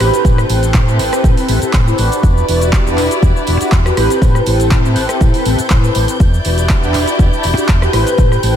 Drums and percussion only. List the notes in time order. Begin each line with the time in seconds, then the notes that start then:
0.00 cross-stick, open hi-hat
0.14 closed hi-hat, tambourine, cabasa
0.25 kick, closed hi-hat, tambourine, cabasa
0.38 cross-stick, tambourine, cabasa
0.49 open hi-hat, tambourine
0.63 closed hi-hat, tambourine, cabasa
0.74 kick, clap, closed hi-hat, tambourine, cabasa
0.88 tambourine, cabasa
0.99 open hi-hat, tambourine
1.13 cross-stick, closed hi-hat, tambourine, cabasa
1.24 kick, closed hi-hat, tambourine, cabasa
1.37 open hi-hat, tambourine, cabasa
1.49 open hi-hat, tambourine
1.62 closed hi-hat, tambourine, cabasa
1.73 kick, clap, closed hi-hat, tambourine, cabasa
1.87 tambourine, cabasa
1.98 open hi-hat, tambourine
2.12 closed hi-hat, tambourine, cabasa
2.23 kick, closed hi-hat, tambourine, cabasa
2.37 tambourine, cabasa
2.49 open hi-hat, tambourine
2.61 closed hi-hat, tambourine, cabasa
2.73 kick, clap, closed hi-hat, tambourine, cabasa
2.87 tambourine, cabasa
2.98 clap, open hi-hat, tambourine
3.11 closed hi-hat, tambourine, cabasa
3.23 kick, closed hi-hat, tambourine, cabasa
3.35 tambourine, cabasa
3.47 open hi-hat, tambourine
3.61 closed hi-hat, tambourine, cabasa
3.72 kick, clap, closed hi-hat, cabasa
3.86 cross-stick, tambourine, cabasa
3.97 cross-stick, open hi-hat, tambourine
4.10 closed hi-hat, tambourine, cabasa
4.22 kick, closed hi-hat, tambourine, cabasa
4.35 cross-stick, tambourine, cabasa
4.46 open hi-hat, tambourine
4.60 closed hi-hat, tambourine, cabasa
4.71 kick, clap, closed hi-hat, cabasa
4.85 tambourine, cabasa
4.96 open hi-hat, tambourine
5.09 cross-stick, closed hi-hat, tambourine, cabasa
5.21 kick, closed hi-hat, tambourine, cabasa
5.34 open hi-hat, tambourine, cabasa
5.46 open hi-hat, tambourine
5.59 closed hi-hat, tambourine, cabasa
5.70 kick, clap, closed hi-hat, tambourine, cabasa
5.84 tambourine, cabasa
5.95 open hi-hat, tambourine
6.08 closed hi-hat, tambourine, cabasa
6.20 kick, closed hi-hat, tambourine, cabasa
6.34 tambourine, cabasa
6.45 open hi-hat, tambourine
6.58 closed hi-hat, tambourine, cabasa
6.69 kick, clap, closed hi-hat, tambourine, cabasa
6.83 tambourine, cabasa
6.94 clap, open hi-hat, tambourine
7.07 closed hi-hat, tambourine, cabasa
7.19 kick, closed hi-hat, tambourine, cabasa
7.33 tambourine, cabasa
7.43 open hi-hat, tambourine
7.57 closed hi-hat, tambourine, cabasa
7.69 kick, clap, closed hi-hat, tambourine, cabasa
7.82 cross-stick, tambourine, cabasa
7.93 cross-stick, open hi-hat, tambourine
8.06 closed hi-hat, tambourine, cabasa
8.18 kick, closed hi-hat, tambourine, cabasa
8.32 cross-stick, tambourine, cabasa
8.43 open hi-hat, tambourine